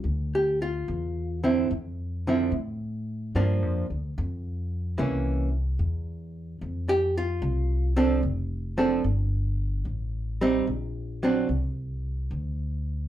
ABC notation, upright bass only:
X:1
M:4/4
L:1/8
Q:"Swing" 1/4=73
K:Dm
V:1 name="Upright bass" clef=bass
D,,2 E,,2 F,,2 A,,2 | (3G,, F,, D,, F,,2 C,,2 E,,2 | F,,2 C,,2 F,,,2 G,,,2 | A,,,2 B,,,2 C,,2 D,,2 |]